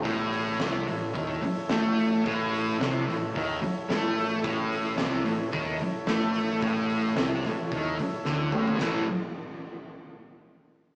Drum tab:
RD |----------------|----------------|----------------|----------------|
HH |o-o-o-o-o-o-o-o-|o-o-o-o-o-o-o-o-|o-o-o-o-o-o-o-o-|o-o-o-o-o-o-----|
SD |----o-------o---|----o-------o---|----o-------o---|----o-------o---|
T2 |----------------|----------------|----------------|--------------o-|
FT |----------------|----------------|----------------|---------------o|
BD |o-------o-------|o-------o-------|o-------o-------|o-------o-------|

RD |b---------------|
HH |----------------|
SD |o---------------|
T2 |----------------|
FT |----------------|
BD |o---------------|